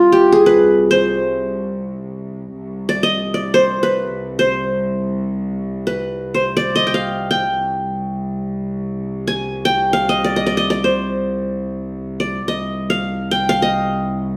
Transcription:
Already playing: C2 F4
0.12 G4
0.32 G#4
0.46 B4
0.91 C5
2.55 C2
2.89 D5
3.03 D#5
3.34 D5
3.54 C5
3.83 B4
4.39 C5
5.87 B4
6.34 C5
6.57 D5
6.76 D#5
6.87 G5
6.94 F5
7.31 G5
7.53 C2
9.28 G#5
9.65 G5
9.93 F5
10.09 D#5
10.24 D5
10.36 D#5
10.46 D5
10.57 D#5
10.70 D5
10.84 C5
12.20 D5
12.48 C2 D#5
12.90 F5
13.31 G5
13.49 F5
13.62 D#5

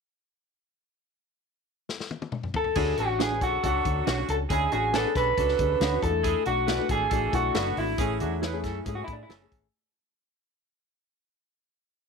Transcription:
1.89 snare
2.00 snare
2.11 high tom
2.22 high tom
2.32 mid tom
2.43 mid tom
2.54 A4, floor tom
2.64 floor tom
2.75 D2 G#3 C#4 D4 E4 F#4 G#4, kick, crash
2.97 A1 D3 C#4 D4 F#4, closed hi-hat
3.19 B3 D4 F#4 G#4 B4 C#5, snare, closed hi-hat
3.31 C#4 D4 G#4
3.41 B1 F#3 D4 F#4 A4, kick, closed hi-hat
3.63 C#2 F#3 C#4 D4 F#4 A4, kick, closed hi-hat
3.85 D2 C#4 D4 F#4, kick, closed hi-hat
4.06 B1 D3 C#4 D4 F#4 C#5, snare, closed hi-hat
4.18 C#4 D4 F#4
4.28 C#2 A4, closed hi-hat
4.49 D2 G#3 C#4 D4 E4 G#4, kick, closed hi-hat
4.71 A1 D3 C#4 D4 F#4 G#4, closed hi-hat
4.93 B3 D4 F#4 G#4 A4 B4 C#5, snare, closed hi-hat
5.05 C#4 D4 G#4
5.15 B1 F#3 D4 A4 B4, kick, snare, closed hi-hat
5.37 C#2 F#3 C#4 D4 F#4 A4, kick, closed hi-hat
5.49 snare
5.59 D2 C#4 D4 G#4, kick, closed hi-hat
5.80 D2 D3 B3 D4 F#4 C#5, snare, closed hi-hat
5.92 C#4 D4 F#4
6.02 E2 G#3 D4 E4 A4, kick, closed hi-hat
6.09 A3
6.23 G#3 E4 G#4, kick, closed hi-hat
6.45 B1 F#3 A3 D4 F#4, closed hi-hat
6.67 E3 D4 E4 A4 B4 D5, snare, closed hi-hat
6.79 A3 D4 F#4
6.89 G#1 E3 D4 G#4 A4, kick, closed hi-hat
7.09 A1 E3 A3 D4 F#4 A4, kick, closed hi-hat
7.33 B1 A3 D4 E4 F#4, kick, closed hi-hat
7.54 F#1 D3 B3 E4 F#4 A4 D5, snare, closed hi-hat
7.66 A3 D4 F#4
7.77 G#1 E4, open hi-hat
7.98 A1 E3 A3 C#4 G#4, kick, closed hi-hat
8.20 E2 F#3 A3 C#4 D4 F#4 G#4, closed hi-hat
8.42 B3 E4 G#4 B4 C#5, snare, closed hi-hat
8.53 A3 C#4 G#4
8.63 F#2 E3 C#4 A4, kick, snare, closed hi-hat
8.85 G#2 E3 A3 C#4 G#4, kick, closed hi-hat
8.95 F#4
9.04 A2 E4, kick, closed hi-hat
9.08 A3 C#4 G#4
9.13 D4
9.23 E4
9.29 E3 C#4 E4 G#4 A4 C#5, snare, closed hi-hat
9.41 A3 C#4 G#4
9.52 G#1, kick, closed hi-hat

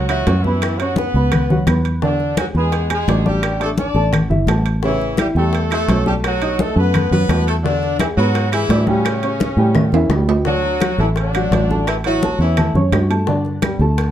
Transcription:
Already playing: C#2
0.09 E3 F#3 E4 F#4 E5, high bongo, high conga, high timbale, claves
0.27 F#2 C#4 C#5 C#6, high bongo, low bongo, high conga, high timbale, low timbale
0.43 E3 B3 E4 B4 B5, high conga
0.62 high bongo, high conga, high timbale, claves
0.79 F#3 C#4 F#4 C#5 C#6, high bongo, high conga, high timbale
0.96 B3 B4, high bongo, high conga
1.14 C#2 B3 B4 B5, high bongo
1.32 high bongo, high conga, low conga, high timbale, claves
1.50 F#3 F#4 F#5, high bongo, high conga, low conga
1.67 E2 B3 B4 B5, high bongo, low bongo, high conga, high timbale, claves
1.85 high timbale
2.02 D3 D4 D5, high bongo, high conga
2.20 high bongo, high conga
2.37 F#3 G#3 F#4 G#4 G#5, high bongo, high conga, high timbale, claves
2.55 E2 G#3 B3 G#4 B4 B5, high bongo, high conga
2.72 high bongo, high conga, high timbale
2.90 G#3 G#4 G#5, high bongo, high conga, high timbale, claves
3.08 A1 D4 D5 D6, high bongo, low bongo, high conga, high timbale, low timbale
3.25 G3 D4 G4 D5 D6, high conga
3.43 high bongo, high conga, high timbale, claves
3.60 A3 D4 A4 D5 D6, high bongo, high conga, high timbale
3.78 D4 D5, high bongo, high conga
3.94 A1 A3 A4 A5, high bongo
4.13 high bongo, high conga, low conga, high timbale, claves
4.30 G1 E3 E4 E5, high bongo, high conga, low conga
4.47 A1 A3 A4 A5, high bongo, low bongo, high conga, high timbale, low timbale, claves
4.66 high timbale
4.83 C#3 E3 C#4 E4 C#5, high bongo, high conga
5.00 high bongo, high conga
5.17 E3 G3 E4 G4 E5, high bongo, high conga, high timbale, claves
5.35 E2 G3 A3 G4 A4 G5, high bongo, high conga
5.53 high bongo, high conga, high timbale
5.70 E3 A3 E4 A4 E5, high bongo, high conga, high timbale, claves
5.88 B1 C#4 C#5 C#6, high bongo, low bongo, high conga, high timbale, low timbale
6.06 G3 A3 G4 A4 A5, high conga
6.24 F#3 F#4, high bongo, high conga, high timbale, claves
6.41 D#4 D#5 D#6, high bongo, high conga, high timbale
6.59 A3 A4, high bongo, high conga
6.75 F#2 A3 B3 A4 B4 A5, high bongo
6.94 high bongo, high conga, low conga, high timbale, claves
7.11 F#2 F#3 B3 F#4 B4 F#5, high bongo, high conga, low conga
7.28 E2 A3 A4 A5, high bongo, low bongo, high conga, high timbale, low timbale, claves
7.48 A3 A4, high timbale
7.63 D3 D4 D5, high bongo, high conga
7.82 high bongo, high conga
7.98 E3 G#3 E4 G#4 G#5, high bongo, high conga, high timbale, claves
8.17 G#2 F#3 B3 F#4 B4 B5, high bongo, high conga
8.35 high bongo, high conga, high timbale
8.52 E3 G#3 E4 G#4 G#5, high bongo, high conga, high timbale, claves
8.69 A2 D4 D5 D6, high bongo, low bongo, high conga, high timbale, low timbale
8.87 C#3 G3 C#4 G4 G5, high conga
9.05 high bongo, high conga, high timbale, claves
9.23 C#4 C#5 C#6, high bongo, high conga, high timbale
9.40 high bongo, high conga
9.57 A2 G3 G4 G5, high bongo
9.75 high bongo, high conga, low conga, high timbale, claves
9.92 E2 E3 E4 E5, high bongo, high conga, high timbale
10.09 D2 G3 G4 G5, high bongo, low bongo, high conga, low timbale, claves
10.29 low timbale
10.45 D3 F#3 D4 F#4 D5, high bongo, high conga
10.63 high bongo, high conga
10.80 F#3 F#4 F#5, high bongo, high conga, high timbale, claves
10.98 A1 E3 A3 E4 A4 A5, high bongo, high conga
11.16 D3 D4, high bongo, high conga, high timbale
11.34 F#3 F#4 F#5, high bongo, high conga, high timbale, claves
11.51 A1, high bongo, low bongo, high conga, high timbale, low timbale
11.70 A3 A4 A5, high conga
11.87 E3 E4, high bongo, high conga, high timbale, claves
12.04 E3 F#3 E4 F#4 E5, high bongo, high conga, high timbale
12.23 A3 A4 A5, high bongo, high conga
12.39 E2 E3 C#4 E4 C#5 C#6, high bongo
12.57 A3 A4 A5, high bongo, high conga, low conga, high timbale, claves
12.74 F#2 C#4 C#5 C#6, high bongo, high conga, low conga
12.92 G2, high bongo, low bongo, high conga, high timbale, low timbale, claves
13.10 A3 A4 A5, high timbale
13.27 D3 D4 D5, high bongo, high conga
13.45 high bongo, high conga
13.62 G3 G4 G5, high bongo, high conga, high timbale, claves
13.79 D2 A3 A4 A5, high bongo, high conga
13.98 high bongo, high conga, high timbale

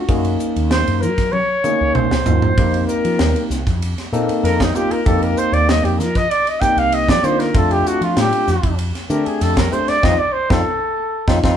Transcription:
Already playing: F#4
0.08 F#2 A#3 C#4 D#4 G#4, kick, ride
0.25 ride
0.40 hi-hat pedal
0.56 D#2, ride
0.71 C5, snare, ride
0.87 F#2, ride
1.01 F#3 A#4, hi-hat pedal
1.18 kick, snare, ride
1.32 C#5, high tom
1.64 A#3 C#4 D#4 G#4, hi-hat pedal, mid tom
1.81 C#2
1.95 C2 C5, mid tom
2.11 C#2, snare
2.26 D#2 A#3 C#4 D#4 F4, floor tom, hi-hat pedal
2.42 F2, floor tom
2.58 F2 A#3 C4 D#4 G4, kick, ride
2.74 ride
2.87 A#4, hi-hat pedal
3.05 F3, ride
3.19 D#2, snare, ride
3.36 ride
3.50 C2, snare, hi-hat pedal
3.66 F2, kick, snare, ride
3.82 ride
3.98 snare, ride
4.12 A#2 A#3 C4 D#4 A4, hi-hat pedal
4.28 muted fretless electric bass stroke, ride
4.43 F2 A#4, snare, ride
4.60 D#4, kick, snare, ride
4.75 A#3 C4 D#4 F4 G4, hi-hat pedal
4.90 A#4, muted fretless electric bass stroke, ride
5.06 F2 A#3 C4 D#4 G4 A4, kick, ride
5.22 A#4, ride
5.37 C5, hi-hat pedal
5.52 D#2 D5, ride
5.69 D#5, snare, ride
5.83 F2 G4, ride
5.99 F3 A#4, snare, hi-hat pedal
6.15 D#5, kick, snare, ride
6.30 D5, ride
6.47 D#5, ride
6.61 A#3 C4 D#4 G4 G5, kick, snare, hi-hat pedal
6.76 C2 F5, ride
6.92 D#5, ride
7.08 F3 D5, kick, snare, ride
7.23 D3 A#3 C4 D#4 F4 C5, hi-hat pedal
7.40 A#4, snare, ride
7.54 F2 A3 C4 D4 F4 A4, kick, ride
7.71 G4, ride
7.86 F#4, hi-hat pedal
8.01 F3 F4, ride
8.17 A2 G4, snare, ride
8.32 ride
8.48 F2, snare, hi-hat pedal
8.63 F2, kick, ride
8.79 ride
8.95 snare, ride
9.09 D3 A3 C4 D4 G4 A#4, hi-hat pedal
9.26 G#4, muted fretless electric bass stroke, ride
9.41 F2 A4, snare, ride
9.57 A#4, kick, snare, ride
9.71 A3 C4 D4 G4 C5, hi-hat pedal
9.88 D5, muted fretless electric bass stroke, snare, ride
10.03 F2 C4 D#4 F4 D#5, kick, snare
10.19 D5
10.33 C5
10.50 F2 C4 D#4 F4 A4, kick, snare
11.27 F2 C4 D#4 F4, kick, snare
11.44 F2 C4 D#4 F4, kick, snare

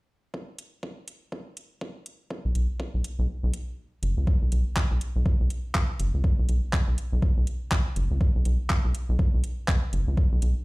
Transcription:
0.34 kick
0.58 closed hi-hat
0.83 kick
1.08 closed hi-hat
1.32 kick
1.57 closed hi-hat
1.81 kick
2.06 closed hi-hat
2.31 kick
2.45 B1
2.55 B1, closed hi-hat
2.80 kick
2.94 B1
3.04 closed hi-hat
3.19 B1
3.43 B1
3.54 closed hi-hat
4.03 F#1, closed hi-hat
4.17 C#2
4.27 kick
4.42 B1
4.52 B1, closed hi-hat
4.76 kick, clap
4.91 B1
5.01 closed hi-hat
5.16 B1
5.26 kick
5.40 B1
5.50 closed hi-hat
5.75 kick, clap
6.00 F#1, closed hi-hat
6.14 C#2
6.24 kick
6.39 B1
6.49 B1, closed hi-hat
6.73 kick, clap
6.88 B1
6.98 closed hi-hat
7.12 B1
7.22 kick
7.37 B1
7.47 closed hi-hat
7.72 kick, clap
7.96 F#1, closed hi-hat
8.11 C#2
8.21 kick
8.35 B1
8.45 B1, closed hi-hat
8.70 kick, clap
8.85 B1
8.95 closed hi-hat
9.09 B1
9.19 kick
9.34 B1
9.44 closed hi-hat
9.68 kick, clap
9.93 F#1, closed hi-hat
10.08 C#2
10.17 kick
10.32 B1
10.42 B1, closed hi-hat

